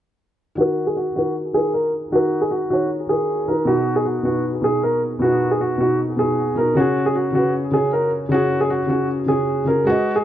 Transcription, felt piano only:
0.55 1.04 D#3 loud
0.55 1.05 D#4 medium
0.55 1.06 F#4 medium
0.60 1.07 A#4 loud
1.13 1.46 D#3 medium
1.13 1.47 D#4 medium
1.13 1.48 F#4 medium
1.18 1.49 A#4 medium
1.52 2.01 D#3 medium
1.52 2.02 D#4 medium
1.52 2.03 F#4 medium
1.57 2.04 A#4 medium
2.10 2.59 D#3 medium
2.10 2.60 D#4 medium
2.10 2.61 F#4 medium
2.15 2.62 A#4 loud
2.68 3.01 D#3 medium
2.68 3.02 D#4 medium
2.68 3.03 F#4 medium
2.73 3.04 C#5 medium
3.07 3.40 D#3 medium
3.07 3.41 D#4 medium
3.07 3.42 F#4 medium
3.12 3.43 A#4 medium
3.46 3.63 D#3 medium
3.46 3.64 D#4 medium
3.46 3.65 F#4 medium
3.51 3.65 A#4 medium
3.65 4.14 B2 medium
3.65 4.15 B3 medium
3.65 4.16 D#4 medium
3.70 4.17 F#4 loud
4.23 4.56 B2 medium
4.23 4.57 B3 medium
4.23 4.58 D#4 medium
4.28 4.59 F#4 medium
4.62 5.11 B2 medium
4.62 5.12 B3 medium
4.62 5.13 D#4 medium
4.67 5.13 G#4 medium
5.20 5.69 B2 loud
5.20 5.70 B3 medium
5.20 5.71 D#4 medium
5.25 5.71 F#4 loud
5.78 6.11 B2 medium
5.78 6.12 B3 medium
5.78 6.13 D#4 medium
5.83 6.13 F#4 medium
6.17 6.50 B2 medium
6.17 6.51 B3 medium
6.17 6.52 D#4 medium
6.22 6.52 F#4 medium
6.55 6.72 B2 medium
6.55 6.73 B3 medium
6.55 6.74 D#4 medium
6.60 6.75 F#4 medium
6.75 7.24 C#3 medium
6.75 7.25 C#4 medium
6.75 7.26 F#4 medium
6.80 7.27 G#4 loud
7.32 7.66 C#3 medium
7.32 7.66 C#4 medium
7.32 7.67 F#4 medium
7.37 7.68 B4 medium
7.71 8.21 C#3 medium
7.71 8.22 C#4 medium
7.71 8.22 F#4 medium
7.77 8.23 G#4 medium
8.29 8.78 C#3 medium
8.29 8.79 C#4 medium
8.29 8.80 F#4 medium
8.34 8.81 G#4 loud
8.87 9.21 C#3 medium
8.87 9.21 C#4 medium
8.87 9.22 F#4 medium
8.92 9.23 G#4 medium
9.26 9.59 C#3 medium
9.26 9.60 C#4 medium
9.26 9.61 F#4 medium
9.32 9.62 G#4 medium
9.64 9.82 C#3 medium
9.64 9.83 C#4 medium
9.64 9.84 F#4 medium
9.70 9.84 G#4 medium
9.84 10.24 G#3 medium
9.84 10.24 G#4 medium
9.84 10.24 B4 medium
9.89 10.24 D#5 loud

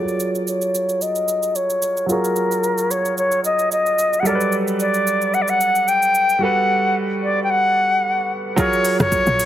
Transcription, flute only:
0.00 0.44 C#5 medium
0.48 1.03 C#5 medium
1.02 1.57 D#5 medium
1.56 2.09 C#5 medium
2.10 2.92 A#4 medium
2.91 3.18 C#5 medium
3.18 3.43 C#5 medium
3.45 3.70 D#5 medium
3.72 4.21 D#5 medium
4.20 4.28 F#5 medium
4.26 4.56 D5 loud
4.80 5.36 D5 medium
5.34 5.43 F#5 loud
5.42 5.51 D5 medium
5.49 5.90 F#5 loud
5.88 6.44 G5 loud
6.42 6.96 F#5 loud
7.23 7.42 D5 medium
7.44 7.52 G5 medium
7.50 8.31 F#5 loud
8.59 8.97 C#5 loud
9.00 9.45 C#5 loud

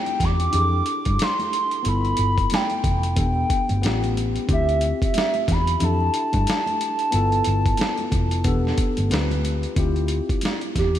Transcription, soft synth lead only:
0.00 0.26 G5 medium
0.24 1.24 D6 loud
1.23 1.87 C6 loud
1.89 2.56 B5 loud
2.54 3.18 G5 loud
3.19 4.13 G5 medium
4.53 5.00 E5 loud
5.04 5.53 E5 medium
5.52 5.85 B5 loud
5.84 9.12 A5 loud
10.79 10.99 G4 medium

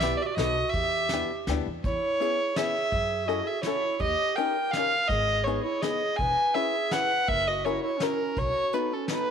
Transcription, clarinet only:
0.02 0.23 G4 medium
0.21 0.25 F#4 medium
0.21 0.30 G4 medium
0.29 0.37 F#4 medium
0.37 0.77 F#4 medium
0.75 1.48 G4 medium
1.86 2.56 E4 medium
2.55 3.27 G#4 medium
3.25 3.46 F#4 medium
3.44 3.61 G#4 medium
3.62 3.96 E4 medium
3.99 4.38 G4 medium
4.36 4.73 A#4 medium
4.73 5.13 A#4 medium
5.12 5.46 G#4 medium
5.46 5.64 G#4 medium
5.64 5.84 E4 medium
5.82 6.22 G#4 medium
6.21 6.59 B4 medium
6.57 6.96 G#4 medium
6.95 7.31 B4 medium
7.30 7.50 A#4 medium
7.48 7.67 F#4 medium
7.66 7.83 E4 medium
7.83 7.99 E4 medium
7.98 8.40 C#4 medium
8.39 8.77 F#4 medium
8.75 8.95 D#4 medium
8.93 9.10 C#4 medium
9.11 9.31 D#4 medium

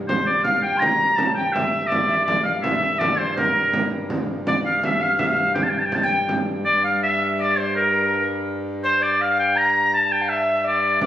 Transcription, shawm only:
0.08 0.25 C5 medium
0.26 0.43 D5 medium
0.43 0.61 F5 loud
0.62 0.81 G5 loud
0.79 1.18 A#5 loud
1.16 1.34 A5 loud
1.34 1.54 G5 medium
1.53 1.88 E5 medium
1.87 2.24 D5 medium
2.24 2.43 D5 medium
2.43 2.52 F5 medium
2.62 3.00 E5 medium
2.98 3.20 D5 medium
3.18 3.37 C5 medium
3.37 3.88 A#4 medium
4.47 4.55 D5 medium
4.65 4.86 F5 medium
4.85 5.04 E5 medium
5.03 5.21 F5 medium
5.19 5.30 E5 loud
5.29 5.53 F5 medium
5.54 5.64 G5 medium
5.62 5.71 A5 medium
5.69 5.80 G5 medium
5.78 5.87 A5 medium
5.85 5.96 G5 medium
5.94 6.05 A5 medium
6.04 6.29 G5 loud
6.65 6.82 D5 loud
6.85 7.01 F5 medium
7.03 7.33 E5 loud
7.33 7.42 E5 medium
7.41 7.59 D5 loud
7.58 7.75 C5 medium
7.75 8.26 A#4 medium
8.84 9.04 C5 loud
9.02 9.23 D5 loud
9.21 9.39 F5 loud
9.39 9.58 G5 loud
9.57 9.93 A#5 loud
9.94 10.13 A5 loud
10.11 10.30 G5 loud
10.29 10.65 E5 medium
10.66 11.00 D5 medium
11.02 11.06 D5 loud

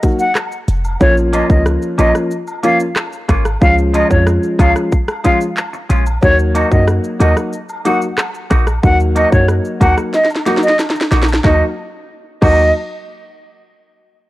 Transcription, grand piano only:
0.03 0.21 F#3 medium
0.03 0.21 A#3 medium
0.03 0.21 D#4 medium
0.03 0.21 F#4 medium
1.00 1.46 F3 medium
1.00 1.46 A#3 medium
1.00 1.46 C#4 medium
1.00 1.46 F4 loud
1.49 1.95 F3 medium
1.49 1.95 A#3 medium
1.49 1.95 C#4 medium
1.49 1.95 F4 medium
1.98 2.28 F3 medium
1.98 2.29 A#3 medium
1.98 2.29 C#4 medium
1.98 2.29 F4 medium
2.63 2.81 F3 medium
2.63 2.81 A#3 medium
2.63 2.82 C#4 medium
2.63 2.82 F4 medium
3.61 4.07 F3 loud
3.61 4.07 G#3 medium
3.61 4.07 C#4 medium
3.61 4.07 F4 loud
4.10 4.55 F3 medium
4.10 4.56 G#3 medium
4.10 4.56 C#4 medium
4.10 4.56 F4 medium
4.59 4.89 F3 medium
4.59 4.89 G#3 medium
4.59 4.90 C#4 medium
4.59 4.90 F4 medium
5.24 5.42 F3 medium
5.24 5.42 G#3 medium
5.24 5.42 C#4 medium
5.24 5.43 F4 medium
6.22 6.67 F#3 loud
6.22 6.67 A#3 medium
6.22 6.68 D#4 medium
6.22 6.68 F#4 loud
6.71 7.16 F#3 medium
6.71 7.16 A#3 medium
6.71 7.17 D#4 medium
6.71 7.17 F#4 medium
7.20 7.50 F#3 medium
7.20 7.50 A#3 medium
7.20 7.50 D#4 medium
7.20 7.51 F#4 medium
7.85 8.03 F#3 medium
7.85 8.03 A#3 medium
7.85 8.03 D#4 medium
7.85 8.03 F#4 medium
8.83 9.28 F#3 medium
8.83 9.28 A#3 medium
8.83 9.28 D#4 medium
8.83 9.29 F#4 loud
9.32 9.77 F#3 medium
9.32 9.77 A#3 medium
9.32 9.77 D#4 medium
9.32 9.77 F#4 medium
9.81 10.11 F#3 medium
9.81 10.11 A#3 medium
9.81 10.11 D#4 medium
9.81 10.11 F#4 medium
10.46 10.64 F#3 medium
10.46 10.64 A#3 medium
10.46 10.64 D#4 medium
10.46 10.64 F#4 medium
11.44 11.62 F#3 medium
11.44 11.62 A#3 medium
11.44 11.63 D#4 medium
11.44 11.63 F#4 loud
12.42 12.66 F#3 medium
12.42 12.66 A#3 medium
12.42 12.67 D#4 medium
12.42 12.67 F#4 loud

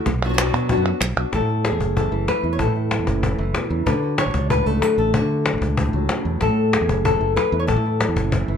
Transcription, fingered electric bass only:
0.06 0.50 B1 loud
0.54 0.75 B2 medium
0.77 0.92 F#2 medium
1.01 1.16 B1 medium
1.17 1.24 B1 medium
1.33 1.40 A1 medium
1.41 1.70 A2 medium
1.72 1.79 E2 medium
1.80 2.09 F#1 medium
2.12 2.27 F#1 medium
2.44 2.58 E2 medium
2.59 2.67 A1 medium
2.67 2.97 A2 medium
2.99 3.07 E2 medium
3.07 3.36 F#1 medium
3.38 3.53 F#1 medium
3.70 3.85 E2 medium
3.86 3.94 D2 medium
3.94 4.24 D3 medium
4.26 4.34 A1 medium
4.34 4.64 C#2 medium
4.66 4.81 C#2 medium
4.98 5.13 A1 medium
5.14 5.21 D2 medium
5.22 5.51 D3 medium
5.53 5.61 A1 medium
5.61 5.91 C#2 medium
5.93 6.08 C#2 medium
6.25 6.40 E2 medium
6.41 6.48 A1 medium
6.49 6.78 A2 medium
6.81 6.88 E2 medium
6.89 7.18 F#1 medium
7.21 7.35 F#1 medium
7.52 7.67 E2 medium
7.69 7.76 A1 medium
7.76 8.06 A2 medium
8.08 8.16 E2 medium
8.16 8.46 F#1 medium
8.48 8.57 F#1 medium

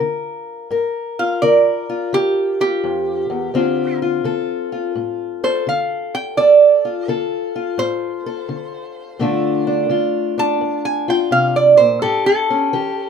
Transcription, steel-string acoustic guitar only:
0.00 0.66 D3 medium
0.00 0.73 F4 medium
0.00 0.69 A#4 medium
0.70 1.37 G2 medium
0.70 1.42 A#4 medium
1.19 1.89 F4 medium
1.42 2.08 D3 medium
1.42 3.52 A#4 medium
1.89 2.60 F4 medium
2.13 2.79 D3 medium
2.60 3.56 F4 medium
2.83 3.29 F2 medium
3.30 3.53 E2 medium
3.54 4.20 D2 medium
3.54 4.24 D3 medium
3.54 6.35 C4 medium
3.54 4.02 F4 medium
4.02 4.72 F4 medium
4.24 4.91 D3 medium
4.24 5.43 A4 medium
4.72 6.84 F4 medium
4.95 5.62 A2 medium
5.44 6.38 A4 medium
5.67 6.33 D3 medium
6.37 7.03 D2 medium
6.37 7.09 A4 medium
6.85 7.55 F4 medium
7.08 7.74 D3 medium
7.08 8.26 A4 medium
7.56 9.17 F4 medium
7.78 8.44 A2 medium
8.26 9.22 A4 medium
8.49 9.15 D3 medium
9.19 9.85 A#2 medium
9.19 9.88 D3 medium
9.19 12.06 A3 medium
9.19 9.66 D4 medium
9.19 9.89 F4 medium
9.67 10.36 D4 medium
9.89 10.56 D3 medium
9.89 11.07 F4 medium
10.38 11.99 D4 medium
10.61 11.27 F2 medium
11.08 11.99 F4 medium
11.31 11.78 C3 medium
11.79 12.02 A#2 medium
12.03 12.68 A2 medium
12.03 12.72 G4 medium
12.50 13.09 C#4 medium
12.73 13.09 E3 medium
12.73 13.09 G4 medium

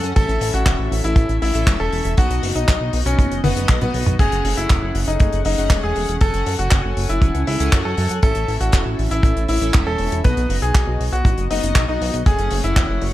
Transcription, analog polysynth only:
0.00 0.13 C#4 medium
0.00 0.13 A4 medium
0.00 0.13 F#5 loud
0.00 0.13 G#5 medium
0.16 1.52 C#4 medium
0.16 1.52 E4 medium
0.16 1.52 A4 medium
0.16 1.52 E5 medium
1.55 2.15 C#4 medium
1.55 2.15 E4 medium
1.55 2.15 A4 medium
1.55 2.15 E5 loud
2.18 3.41 B3 medium
2.18 3.41 D#4 medium
2.18 3.41 F#4 medium
2.18 3.41 D#5 medium
3.44 3.79 B3 loud
3.44 3.79 D#4 medium
3.44 3.79 F#4 medium
3.44 3.79 D#5 loud
3.82 4.16 B3 medium
3.82 4.16 D#4 medium
3.82 4.16 F#4 medium
3.82 4.16 D#5 medium
4.19 5.55 A3 medium
4.19 5.55 C#4 medium
4.19 5.55 G#4 medium
4.19 5.55 F#5 medium
5.58 6.18 A3 medium
5.58 6.18 C#4 medium
5.58 6.18 G#4 medium
5.58 6.18 F#5 loud
6.21 7.57 C#4 medium
6.21 7.57 A4 medium
6.21 7.57 F#5 medium
6.21 7.57 G#5 medium
7.60 8.20 C#4 medium
7.60 8.20 A4 medium
7.60 8.20 F#5 loud
7.60 8.20 G#5 medium
8.23 9.58 C#4 medium
8.23 9.58 E4 medium
8.23 9.58 A4 medium
8.23 9.58 E5 medium
9.61 10.21 C#4 medium
9.61 10.21 E4 medium
9.61 10.21 A4 medium
9.61 10.21 E5 loud
10.25 11.48 B3 medium
10.25 11.48 D#4 medium
10.25 11.48 F#4 medium
10.25 11.48 D#5 medium
11.51 11.85 B3 loud
11.51 11.85 D#4 medium
11.51 11.85 F#4 medium
11.51 11.85 D#5 loud
11.88 12.23 B3 medium
11.88 12.23 D#4 medium
11.88 12.23 F#4 medium
11.88 12.23 D#5 medium
12.26 13.13 A3 medium
12.26 13.13 C#4 medium
12.26 13.13 G#4 medium
12.26 13.13 F#5 medium

